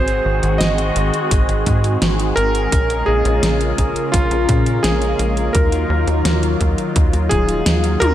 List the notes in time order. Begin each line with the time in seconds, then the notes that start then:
Already playing: G#1 D#3 G#3 C4 F#4 G#4 C5
0.08 closed hi-hat
0.25 G#1
0.43 G#1, closed hi-hat
0.58 G#1 D#5, snare, closed hi-hat
0.78 closed hi-hat
0.96 G#1, closed hi-hat
1.14 closed hi-hat
1.31 G#1, kick, closed hi-hat
1.49 G#1, closed hi-hat
1.66 G#2, kick, closed hi-hat
1.84 closed hi-hat
2.02 G#1 C4 F#4 G#4, snare, closed hi-hat
2.20 closed hi-hat
2.36 G#1 A#4, closed hi-hat
2.55 closed hi-hat
2.72 A#1 C#3 A#3 C#4 F4 G#4 A#4, kick, closed hi-hat
2.90 closed hi-hat
3.06 A#1 G#4
3.25 A#1, closed hi-hat
3.43 A#1, snare, closed hi-hat
3.61 closed hi-hat
3.78 A#1, kick, closed hi-hat
3.96 closed hi-hat
4.12 A#1 F4, kick, closed hi-hat
4.31 A#1, closed hi-hat
4.49 A#2, kick, closed hi-hat
4.66 closed hi-hat
4.83 A#1 C#4 G#4 A#4, snare, closed hi-hat
5.02 closed hi-hat
5.19 A#1, closed hi-hat
5.37 closed hi-hat
5.53 D#2 D#3 F#3 D#4 F4 A#4, kick, closed hi-hat
5.72 closed hi-hat
5.90 D#2
6.07 D#2, closed hi-hat
6.25 D#2, snare, closed hi-hat
6.43 closed hi-hat
6.61 D#2, kick, closed hi-hat
6.78 closed hi-hat
6.96 D#2, kick, closed hi-hat
7.13 D#2, closed hi-hat
7.29 D#1 G#4, kick, closed hi-hat
7.49 closed hi-hat
7.66 D#2 F#3 D#4 F4, snare, closed hi-hat
7.84 closed hi-hat
8.00 D#2 A#4, closed hi-hat, high tom